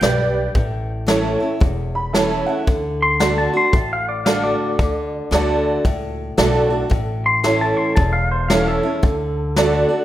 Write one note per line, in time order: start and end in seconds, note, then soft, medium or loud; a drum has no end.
0.00 0.47 B1 medium
0.00 0.52 G2 medium
0.00 0.44 G4 medium
0.00 0.44 B4 medium
0.00 0.44 D5 medium
0.00 1.37 G5 medium
0.00 snare loud
0.55 1.34 A1 medium
0.55 1.57 A2 loud
0.55 kick loud
0.55 open hi-hat medium
1.07 1.39 E3 medium
1.07 1.39 A3 medium
1.07 1.39 C#4 medium
1.07 1.50 E4 medium
1.07 1.39 E4 medium
1.07 1.50 A4 medium
1.07 1.50 C#5 medium
1.07 snare loud
1.07 open hi-hat medium
1.40 1.61 C#4 soft
1.40 1.60 E4 medium
1.60 2.41 E1 medium
1.60 2.63 E2 medium
1.60 kick loud
1.60 open hi-hat medium
1.95 2.13 B5 medium
2.13 2.46 E3 medium
2.13 2.46 A3 medium
2.13 2.47 C#4 medium
2.13 2.55 E4 medium
2.13 2.45 E4 medium
2.13 2.56 A4 medium
2.13 2.56 C#5 medium
2.13 2.45 A5 medium
2.13 snare loud
2.13 open hi-hat medium
2.46 2.67 C#4 soft
2.46 2.66 E4 medium
2.46 2.65 F#5 medium
2.67 3.47 D2 medium
2.67 3.19 D3 loud
2.67 kick loud
2.67 open hi-hat soft
3.02 3.37 C6 loud
3.20 3.52 D3 medium
3.20 3.52 A3 medium
3.20 3.52 D4 medium
3.20 3.62 F#4 medium
3.20 3.52 F#4 loud
3.20 3.62 A4 medium
3.20 3.62 D5 medium
3.20 snare loud
3.20 open hi-hat medium
3.38 3.55 A5 medium
3.53 3.73 D4 soft
3.53 3.72 F#4 medium
3.53 3.74 C6 loud
3.73 4.53 A1 medium
3.73 4.75 A2 medium
3.73 3.91 A5 medium
3.73 kick loud
3.73 open hi-hat medium
3.93 4.09 F5 loud
4.09 4.26 D5 medium
4.25 4.77 D3 medium
4.25 4.78 A3 medium
4.25 4.78 D4 medium
4.25 4.68 F#4 medium
4.25 4.78 F#4 medium
4.25 4.68 A4 medium
4.25 4.68 D5 medium
4.25 4.43 F5 loud
4.25 snare loud
4.43 5.47 D5 loud
4.79 5.19 D2 medium
4.79 5.30 D3 medium
4.79 kick loud
4.79 open hi-hat medium
5.31 5.77 D2 medium
5.31 5.83 D3 loud
5.31 5.83 A3 medium
5.31 5.83 D4 medium
5.31 5.75 F#4 medium
5.31 5.84 F#4 medium
5.31 5.75 A4 medium
5.31 5.75 D5 medium
5.31 snare loud
5.84 6.30 C#2 medium
5.84 6.87 A2 loud
5.84 kick loud
5.84 open hi-hat medium
6.37 6.83 B1 medium
6.37 6.70 D3 medium
6.37 6.70 A3 medium
6.37 6.70 D4 medium
6.37 6.80 F#4 medium
6.37 6.69 F#4 medium
6.37 6.80 A4 medium
6.37 6.80 D5 medium
6.37 snare loud
6.37 open hi-hat medium
6.70 6.91 D4 soft
6.70 6.90 F#4 medium
6.90 7.71 A1 medium
6.90 7.93 A2 loud
6.90 kick loud
6.90 open hi-hat medium
7.26 7.61 C6 loud
7.44 7.95 E3 medium
7.44 7.95 A3 loud
7.44 7.96 C#4 medium
7.44 7.86 E4 medium
7.44 7.96 E4 medium
7.44 7.86 A4 medium
7.44 7.87 C#5 medium
7.44 snare loud
7.44 open hi-hat medium
7.61 7.77 A5 loud
7.77 7.95 C6 loud
7.96 8.77 E1 medium
7.96 8.99 E2 loud
7.96 8.14 A5 medium
7.96 kick loud
7.96 open hi-hat medium
8.13 8.31 F5 loud
8.31 8.49 C5 medium
8.48 8.82 E3 medium
8.48 8.82 A3 medium
8.48 8.83 C#4 medium
8.48 8.92 E4 medium
8.48 8.82 E4 medium
8.48 8.93 A4 medium
8.48 8.92 C#5 medium
8.48 8.67 F5 loud
8.48 snare loud
8.48 open hi-hat medium
8.68 9.71 A4 loud
8.83 9.03 C#4 soft
8.83 9.03 E4 medium
9.03 9.83 D2 loud
9.03 9.55 D3 medium
9.03 kick loud
9.03 open hi-hat medium
9.56 9.88 D3 medium
9.56 9.88 A3 loud
9.56 9.89 D4 medium
9.56 9.99 F#4 medium
9.56 9.87 F#4 medium
9.56 9.99 A4 medium
9.56 9.99 D5 loud
9.56 snare loud
9.89 10.05 D4 soft
9.89 10.05 F#4 medium